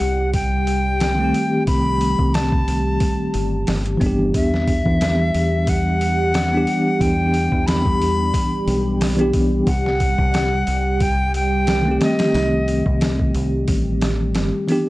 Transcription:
0.00 1.31 C2 medium
0.00 4.34 G3 medium
0.00 4.34 G4 medium
0.00 0.30 F#5 loud
0.00 open hi-hat medium
0.34 1.64 G5 loud
0.34 kick loud
0.34 open hi-hat medium
0.67 open hi-hat medium
1.00 snare loud
1.00 open hi-hat medium
1.15 3.79 D#3 medium
1.15 3.81 A3 medium
1.21 3.82 C4 medium
1.21 3.84 G4 medium
1.34 open hi-hat medium
1.67 2.16 C2 loud
1.67 2.36 B5 loud
1.67 kick loud
1.67 open hi-hat medium
2.01 open hi-hat medium
2.19 2.65 C2 loud
2.19 kick medium
2.34 3.68 A5 medium
2.34 snare loud
2.34 open hi-hat medium
2.52 kick loud
2.68 2.97 C2 medium
2.68 open hi-hat medium
3.00 kick loud
3.00 open hi-hat medium
3.34 3.64 G1 medium
3.34 open hi-hat medium
3.67 3.98 G1 medium
3.67 snare loud
3.67 open hi-hat medium
3.86 closed hi-hat soft
3.97 4.31 G1 medium
3.97 6.47 E3 medium
3.97 6.50 B3 medium
3.97 kick medium
3.97 open hi-hat medium
4.03 6.53 D4 medium
4.03 6.56 G4 medium
4.34 4.82 E2 loud
4.34 14.89 G3 medium
4.34 14.89 G4 medium
4.34 5.71 E5 loud
4.34 kick loud
4.34 open hi-hat medium
4.54 snare soft
4.68 kick medium
4.68 open hi-hat medium
4.86 5.32 E2 loud
4.86 kick medium
5.01 snare loud
5.01 open hi-hat medium
5.34 6.65 E2 medium
5.34 open hi-hat medium
5.67 7.02 F#5 loud
5.67 kick loud
5.67 open hi-hat medium
6.01 open hi-hat medium
6.34 snare loud
6.34 open hi-hat medium
6.49 9.13 E3 medium
6.49 9.14 B3 medium
6.55 9.16 D4 medium
6.55 9.17 G4 medium
6.67 open hi-hat medium
7.01 7.49 E2 loud
7.01 7.68 G5 loud
7.01 kick loud
7.01 open hi-hat medium
7.34 open hi-hat medium
7.52 7.98 E2 loud
7.52 kick loud
7.66 9.00 B5 loud
7.66 snare loud
7.66 open hi-hat medium
7.85 kick loud
8.01 8.31 E2 medium
8.01 open hi-hat medium
8.34 kick loud
8.34 open hi-hat medium
8.67 9.65 B1 loud
8.67 open hi-hat medium
9.01 snare loud
9.01 open hi-hat medium
9.17 9.65 E3 medium
9.17 9.66 B3 medium
9.17 9.66 D4 medium
9.17 closed hi-hat soft
9.21 9.67 G4 loud
9.33 kick medium
9.33 open hi-hat medium
9.67 10.15 C2 loud
9.67 11.03 F#5 loud
9.67 kick loud
9.67 open hi-hat medium
9.86 snare soft
10.00 kick medium
10.00 open hi-hat medium
10.18 10.65 C2 loud
10.18 kick medium
10.34 snare loud
10.34 open hi-hat medium
10.67 11.98 C2 medium
10.67 open hi-hat medium
11.00 11.35 G5 loud
11.00 kick loud
11.00 open hi-hat medium
11.34 11.98 G5 loud
11.34 open hi-hat medium
11.67 snare loud
11.67 open hi-hat medium
11.82 14.46 D#3 medium
11.82 14.48 A3 medium
11.88 14.49 C4 medium
11.88 14.51 G4 medium
12.01 13.32 D#5 loud
12.01 snare loud
12.01 open hi-hat medium
12.19 snare loud
12.19 open hi-hat medium
12.34 12.82 C2 loud
12.34 snare loud
12.34 open hi-hat medium
12.68 open hi-hat medium
12.86 13.32 C2 loud
12.86 kick medium
13.01 snare loud
13.01 open hi-hat medium
13.19 kick loud
13.35 13.64 C2 medium
13.35 open hi-hat medium
13.68 14.36 A1 loud
13.68 kick loud
13.68 open hi-hat medium
14.01 snare loud
14.01 open hi-hat medium
14.35 14.51 G1 medium
14.35 snare loud
14.35 open hi-hat medium
14.68 14.89 E3 medium
14.68 14.89 B3 medium
14.68 14.89 D4 medium
14.68 open hi-hat medium
14.72 14.89 G4 medium

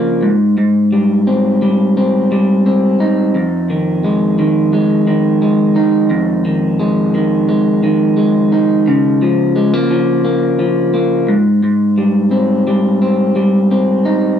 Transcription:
0.00 0.31 C#3 medium
0.00 0.31 F3 medium
0.00 0.30 A#3 medium
0.23 0.56 G#2 medium
0.58 3.34 G#2 medium
0.93 1.61 G3 medium
1.27 1.97 C4 medium
1.62 2.30 G3 medium
1.97 2.65 C4 medium
2.32 3.42 G3 medium
2.66 4.04 C4 medium
3.00 5.76 D#4 medium
3.35 6.09 F2 medium
3.70 4.38 D#3 medium
4.04 4.73 G#3 medium
4.39 5.07 D#3 medium
4.73 5.42 G#3 medium
5.07 6.44 D#3 medium
5.42 6.79 G#3 medium
5.76 8.52 D#4 medium
6.10 8.87 F2 medium
6.45 7.14 D#3 medium
6.79 7.48 G#3 medium
7.15 7.83 D#3 medium
7.48 8.17 G#3 medium
7.83 9.22 D#3 medium
8.17 9.55 G#3 medium
8.52 9.25 D#4 medium
8.88 11.36 C#3 medium
9.22 9.89 F3 medium
9.56 9.73 G#3 medium
9.73 10.23 A#3 soft
9.91 10.58 F3 medium
10.25 10.93 A#3 medium
10.59 11.36 F3 medium
10.94 11.36 A#3 medium
11.29 11.62 G#2 medium
11.63 14.39 G#2 medium
11.98 12.66 G3 medium
12.31 13.01 C4 medium
12.67 13.35 G3 medium
13.02 13.71 C4 medium
13.36 14.39 G3 medium
13.71 14.39 C4 medium
14.05 14.39 D#4 medium

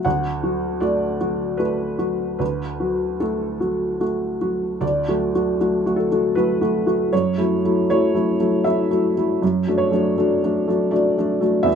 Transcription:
0.05 2.36 D2 soft
0.05 0.81 F#5 medium
0.43 0.77 F#3 soft
0.43 0.78 F#4 soft
0.80 1.16 A3 soft
0.80 1.16 F#4 soft
0.80 1.59 D5 medium
1.20 1.56 F#3 soft
1.20 1.56 F#4 soft
1.57 1.95 A3 soft
1.57 1.95 F#4 soft
1.57 2.37 B4 medium
1.98 2.35 F#3 soft
1.98 2.36 F#4 soft
2.39 4.77 D2 soft
2.39 3.20 B4 soft
2.80 3.17 F#3 soft
2.80 3.16 F#4 soft
3.20 3.57 A3 soft
3.20 3.57 F#4 soft
3.20 4.01 A4 soft
3.60 3.98 F#3 soft
3.60 3.97 F#4 soft
4.00 4.37 A3 soft
4.00 4.38 F#4 soft
4.41 4.77 F#3 soft
4.41 4.77 F#4 soft
4.81 5.06 D2 soft
4.81 5.97 D5 medium
5.08 5.31 F#3 soft
5.08 5.31 A3 soft
5.08 5.31 F#4 soft
5.34 5.57 F#3 soft
5.34 5.57 A3 soft
5.34 5.57 F#4 soft
5.59 5.82 F#3 soft
5.59 5.83 A3 soft
5.59 5.83 F#4 soft
5.86 6.08 F#3 soft
5.86 6.09 A3 soft
5.86 6.08 F#4 soft
5.96 6.35 A4 medium
6.11 6.33 F#3 soft
6.11 6.34 A3 soft
6.11 6.34 F#4 soft
6.35 6.59 F#3 soft
6.35 6.59 A3 soft
6.35 6.59 F#4 soft
6.35 7.12 B4 medium
6.61 6.84 F#3 soft
6.61 6.84 A3 soft
6.61 6.84 F#4 soft
6.86 7.09 F#3 soft
6.86 7.09 A3 soft
6.86 7.10 F#4 soft
7.13 7.37 F#2 soft
7.13 7.88 C#5 medium
7.38 7.60 F#3 soft
7.38 7.60 A3 soft
7.38 7.60 E4 soft
7.64 7.86 F#3 soft
7.64 7.86 A3 soft
7.64 7.87 E4 soft
7.90 8.12 F#3 soft
7.90 8.12 A3 soft
7.90 8.12 E4 soft
7.90 8.65 C#5 medium
8.15 8.37 F#3 soft
8.15 8.37 A3 soft
8.15 8.37 E4 soft
8.40 8.62 F#3 soft
8.40 8.62 A3 soft
8.40 8.63 E4 soft
8.64 8.88 F#3 soft
8.64 8.88 A3 soft
8.64 8.89 E4 soft
8.64 9.42 E5 medium
8.91 9.14 F#3 soft
8.91 9.14 A3 soft
8.91 9.14 E4 soft
9.17 9.39 F#3 soft
9.17 9.40 A3 soft
9.17 9.40 E4 soft
9.42 9.66 F#2 soft
9.67 9.90 F#3 soft
9.67 9.90 A3 soft
9.67 9.90 D4 soft
9.78 10.92 C#5 medium
9.91 10.14 F#3 soft
9.91 10.14 A3 soft
9.91 10.15 D4 soft
10.18 10.40 F#3 soft
10.18 10.40 A3 soft
10.18 10.41 D4 soft
10.43 10.66 F#3 soft
10.43 10.66 A3 soft
10.43 10.66 D4 soft
10.68 10.90 F#3 soft
10.68 10.90 A3 soft
10.68 10.91 D4 soft
10.91 11.14 F#3 soft
10.91 11.14 A3 soft
10.91 11.15 D4 soft
10.91 11.66 D5 medium
11.18 11.39 F#3 soft
11.18 11.39 A3 soft
11.18 11.40 D4 soft
11.40 11.64 F#3 soft
11.40 11.64 A3 soft
11.40 11.64 D4 soft
11.63 11.75 E2 medium
11.63 11.75 E5 medium

